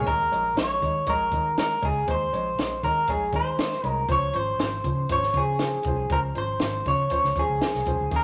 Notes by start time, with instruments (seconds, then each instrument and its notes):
0.05 fingered electric bass D#2, upright piano G#3 D#4 C#5, clean electric guitar A#4, kick, closed hi-hat
0.31 fingered electric bass A#1, upright piano G#3 D#4 C#5, closed hi-hat
0.55 fingered electric bass A#1, upright piano G#3 D#4 C#5, clean electric guitar C#5, snare, closed hi-hat
0.81 fingered electric bass D#3, upright piano G#3 D#4 C#5, kick, closed hi-hat
1.06 fingered electric bass A#1, upright piano G#3 D#4 C#5, clean electric guitar A#4, kick, closed hi-hat
1.32 fingered electric bass D#3, upright piano G#3 D#4 C#5, kick, closed hi-hat
1.58 upright piano G#3 D#4 C#5, clean electric guitar A#4, snare, closed hi-hat
1.81 fingered electric bass C#2, upright piano G#3 D#4 C#5, clean electric guitar G#4, kick, closed hi-hat
2.07 fingered electric bass D#2, upright piano G#3 D#4 C5, kick, closed hi-hat
2.11 clean electric guitar C5
2.33 fingered electric bass A#1, upright piano G#3 D#4 C#5, closed hi-hat
2.57 fingered electric bass A#1, upright piano G#3 D#4 C#5, snare, closed hi-hat
2.83 fingered electric bass D#3, upright piano G#3 D#4 C#5, clean electric guitar A#4, kick, closed hi-hat
3.08 fingered electric bass A#1, upright piano G#3 D#4 C#5, clean electric guitar G#4, kick, closed hi-hat
3.33 fingered electric bass D#3, upright piano G#3 D#4 C#5, clean electric guitar C5, kick, closed hi-hat
3.57 upright piano G#3 D#4 C#5, snare, closed hi-hat
3.72 snare
3.83 fingered electric bass C2, upright piano G#3 D#4 C#5, closed hi-hat
3.88 clean electric guitar A#4
4.08 fingered electric bass C#2, upright piano F3 C#4 C5, clean electric guitar C#5, kick, closed hi-hat
4.33 fingered electric bass G#1, upright piano F3 C#4 C5, clean electric guitar C5, closed hi-hat
4.58 fingered electric bass G#1, upright piano F3 C#4 C5, snare, closed hi-hat
4.84 fingered electric bass C#3, upright piano F3 C#4 C5, kick, closed hi-hat
5.09 fingered electric bass G#1, upright piano F3 C#4 C5, clean electric guitar C#5, kick, closed hi-hat
5.23 snare
5.34 fingered electric bass C#3, upright piano F3 C#4 C5, clean electric guitar G#4, kick, closed hi-hat
5.59 upright piano F3 C#4 C5, snare, closed hi-hat
5.83 fingered electric bass C2, upright piano F3 C5, kick, closed hi-hat
5.87 upright piano C#4
6.10 fingered electric bass C#2, upright piano F3 C#4 C5, clean electric guitar A#4, kick, closed hi-hat
6.34 fingered electric bass G#1, upright piano F3 C#4 C5, clean electric guitar C5, closed hi-hat
6.59 fingered electric bass G#1, upright piano F3 C#4 C5, snare, closed hi-hat
6.85 fingered electric bass C#3, upright piano F3 C#4 C#5, clean electric guitar C#5, kick, closed hi-hat
7.10 upright piano F3 C#4 C5, kick, closed hi-hat
7.24 fingered electric bass C#2, snare
7.36 fingered electric bass D#2, upright piano F3 C#4 C5, clean electric guitar G#4, kick, closed hi-hat
7.48 fingered electric bass C#2
7.61 upright piano F3 C#4 C5, snare, closed hi-hat
7.74 fingered electric bass C2, snare
7.86 fingered electric bass C2, upright piano F3 C#4 C5, kick, closed hi-hat
8.00 fingered electric bass C#2
8.11 fingered electric bass D#2, upright piano D#3 C#4 G#4, kick, closed hi-hat
8.16 clean electric guitar A#4